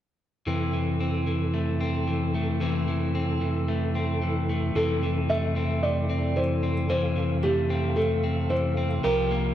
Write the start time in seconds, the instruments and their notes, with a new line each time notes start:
0.46 tonewheel organ F2 C3 E4 A4, clean electric guitar E3 C4
0.73 clean electric guitar E3
1.00 clean electric guitar C4
1.27 clean electric guitar E3
1.54 clean electric guitar A3
1.81 clean electric guitar C4
2.08 clean electric guitar E3
2.34 clean electric guitar A3
2.61 clean electric guitar E3 C4
2.88 clean electric guitar E3
3.15 clean electric guitar C4
3.41 clean electric guitar E3
3.68 clean electric guitar A3
3.95 clean electric guitar C4
4.22 clean electric guitar E3
4.49 clean electric guitar A3
4.75 tonewheel organ F2 C3 E4 A4, clean electric guitar E3 C4, felt piano A4
5.03 clean electric guitar E3
5.30 clean electric guitar A3, felt piano E5
5.56 clean electric guitar C4
5.83 clean electric guitar A3, felt piano D5
6.10 clean electric guitar C4
6.36 clean electric guitar E3, felt piano C5
6.63 clean electric guitar C4
6.90 clean electric guitar E3 C4, felt piano C5, tonewheel organ F5
7.16 clean electric guitar E3
7.43 clean electric guitar A3, felt piano G4
7.70 clean electric guitar C4
7.96 clean electric guitar A3, felt piano A4
8.24 clean electric guitar C4
8.50 clean electric guitar E3, felt piano C5
8.77 clean electric guitar C4
9.04 tonewheel organ C2 A#4, clean electric guitar F3 G4, felt piano A#4
9.31 clean electric guitar A#3